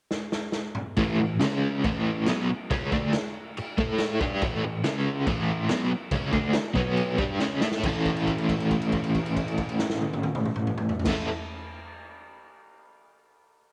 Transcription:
0.11 snare medium
0.32 snare medium
0.52 snare medium
0.75 mid tom loud
0.96 1.18 A2 loud
0.96 1.19 E3 loud
0.96 1.20 A3 loud
0.96 kick loud
0.96 crash medium
1.19 1.37 A2 medium
1.19 1.37 E3 medium
1.40 1.83 C#3 medium
1.40 1.84 G#3 medium
1.40 1.84 C#4 medium
1.40 snare loud
1.40 crash medium
1.84 2.27 A2 loud
1.84 2.27 E3 loud
1.84 2.28 A3 loud
1.84 kick loud
1.84 crash medium
2.26 2.48 B2 medium
2.26 2.49 F#3 medium
2.26 2.49 B3 loud
2.26 snare loud
2.26 crash medium
2.50 muted overdriven electric guitar stroke medium
2.71 2.91 C#3 medium
2.71 2.92 G#3 loud
2.71 2.92 C#4 loud
2.71 kick loud
2.71 crash medium
2.92 3.12 D3 medium
2.92 3.13 A3 loud
2.92 3.14 D4 medium
2.92 kick loud
3.13 snare loud
3.13 crash medium
3.57 muted overdriven electric guitar stroke medium
3.57 crash medium
3.78 4.19 A3 loud
3.78 4.20 E4 loud
3.78 4.21 A4 loud
3.78 kick loud
3.98 snare loud
3.98 crash medium
4.20 4.41 G3 medium
4.20 4.41 D4 loud
4.20 4.42 G4 loud
4.20 kick loud
4.42 4.62 A2 medium
4.42 4.63 E3 loud
4.42 4.64 A3 loud
4.42 kick loud
4.42 crash medium
4.64 4.81 A2 medium
4.64 4.80 E3 medium
4.84 5.26 C#3 medium
4.84 5.26 G#3 medium
4.84 5.27 C#4 medium
4.84 snare loud
4.84 crash medium
5.27 5.69 A2 loud
5.27 5.69 E3 loud
5.27 5.70 A3 loud
5.27 kick loud
5.27 crash medium
5.69 5.90 B2 medium
5.69 5.91 F#3 loud
5.69 5.91 B3 loud
5.69 snare loud
5.69 crash medium
5.92 muted overdriven electric guitar stroke medium
6.11 6.32 C#3 loud
6.11 6.33 G#3 medium
6.11 6.33 C#4 medium
6.11 kick loud
6.11 crash medium
6.32 6.53 D3 medium
6.32 6.54 A3 loud
6.32 6.54 D4 medium
6.32 kick loud
6.53 snare loud
6.53 crash medium
6.74 7.18 B2 medium
6.74 7.18 F#3 medium
6.74 7.19 B3 medium
6.74 kick loud
6.97 crash medium
7.18 7.40 G3 loud
7.18 7.41 D4 loud
7.18 7.41 G4 loud
7.18 kick loud
7.39 7.61 C#3 medium
7.39 7.61 G#3 medium
7.39 7.62 C#4 loud
7.39 snare medium
7.61 7.83 A3 medium
7.61 7.84 E4 medium
7.61 7.84 A4 loud
7.61 snare medium
7.72 snare medium
7.83 11.06 A2 medium
7.83 11.07 E3 loud
7.83 11.08 A3 loud
7.83 11.08 C#4 loud
7.83 11.09 E4 loud
7.83 kick loud
7.83 crash medium
7.88 11.11 A4 loud
8.05 kick medium
8.05 crash soft
8.17 crash soft
8.27 kick medium
8.27 crash soft
8.38 crash soft
8.49 kick medium
8.49 crash medium
8.60 crash soft
8.71 kick medium
8.71 crash soft
8.82 crash medium
8.92 kick medium
8.92 crash medium
9.04 crash medium
9.15 kick medium
9.15 crash soft
9.26 crash medium
9.37 kick medium
9.37 crash medium
9.48 crash soft
9.57 kick medium
9.57 crash soft
9.69 crash soft
9.79 snare medium
9.90 snare loud
10.02 high tom medium
10.13 high tom medium
10.23 high tom loud
10.35 mid tom medium
10.46 mid tom medium
10.56 mid tom medium
10.67 mid tom loud
10.78 mid tom loud
10.89 floor tom loud
11.00 floor tom loud
11.05 11.26 A2 medium
11.05 11.26 E3 medium
11.05 11.27 A3 medium
11.05 11.27 C#4 loud
11.05 kick loud
11.05 snare loud
11.05 crash loud
11.10 11.28 E4 loud
11.10 11.28 A4 medium

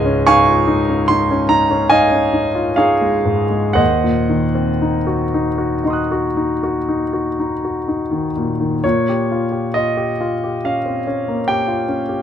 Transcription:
0.00 3.75 C#2 medium
0.00 3.25 G#2 soft
0.00 0.18 G#3 soft
0.00 0.22 D#5 medium
0.00 0.23 F5 medium
0.00 0.26 G#5 medium
0.05 0.40 C#4 soft
0.27 0.61 D#4 medium
0.27 1.05 F5 medium
0.27 1.06 G#5 medium
0.27 1.09 C#6 loud
0.48 0.81 F4 soft
0.67 1.01 D#4 medium
0.89 1.22 C#4 soft
1.08 1.42 D#4 soft
1.08 1.49 C6 medium
1.31 1.63 C#4 medium
1.49 1.83 D#4 soft
1.49 1.91 A#5 medium
1.71 2.04 C#4 soft
1.90 2.26 D#4 soft
1.90 2.75 D#5 medium
1.90 2.75 F5 medium
1.90 2.78 G#5 loud
2.11 2.47 C#4 soft
2.33 2.70 D#4 soft
2.55 2.93 F4 soft
2.76 3.17 D#4 soft
2.76 3.75 G#4 medium
2.76 3.75 C#5 medium
2.76 3.78 F5 medium
3.01 3.42 G#3 soft
3.25 3.68 G#2 soft
3.51 3.78 G#3 soft
3.73 8.77 D#2 soft
3.73 8.29 C5 medium
3.73 5.82 D#5 medium
3.73 8.32 F#5 medium
4.04 4.45 A#2 soft
4.29 4.71 D#3 soft
4.55 4.96 C4 soft
4.82 5.23 D#4 soft
5.07 5.48 F#4 soft
5.34 5.75 D#4 soft
5.58 6.00 F#4 soft
5.84 6.26 D#4 soft
5.84 8.79 D#5 soft
5.84 8.81 C6 soft
5.90 8.82 D#6 soft
5.90 8.84 F#6 soft
6.12 6.52 F#4 soft
6.37 6.77 D#4 soft
6.63 7.03 F#4 soft
6.89 7.28 D#4 soft
7.13 7.52 F#4 soft
7.39 7.77 D#4 soft
7.65 8.02 F#4 soft
7.88 8.26 D#4 soft
8.11 8.51 D#3 soft
8.37 8.75 A#2 soft
8.61 8.84 D#3 soft
8.84 12.22 A#2 soft
8.84 9.73 C#5 medium
9.09 9.43 G4 soft
9.32 9.66 F4 soft
9.51 9.74 G4 soft
9.74 10.11 F4 soft
9.74 10.64 D#5 medium
9.97 10.33 G4 soft
10.21 10.55 F4 soft
10.44 10.77 G4 soft
10.65 10.99 C#4 soft
10.65 11.49 F5 medium
10.86 11.06 C4 soft
11.07 11.40 C#4 soft
11.28 11.61 A#3 soft
11.48 11.82 G4 soft
11.48 12.22 G5 medium
11.68 12.03 F4 soft
11.88 12.22 C#4 soft
12.09 12.22 G4 soft

